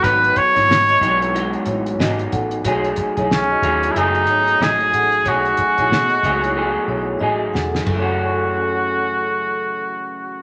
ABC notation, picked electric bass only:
X:1
M:4/4
L:1/16
Q:"Swing 16ths" 1/4=92
K:F#dor
V:1 name="Picked electric bass" clef=bass
G,,,2 z G,,, G,,,2 B,,,4 A,,,2 G,,,2 A,,,2 | B,,,2 z B,,,3 D,,2 F,,,2 G,,,2 A,,,2 A,,,2 | B,,,2 z B,,, B,,2 C,,4 B,,,2 A,,,2 E,,,2 | F,,,16 |]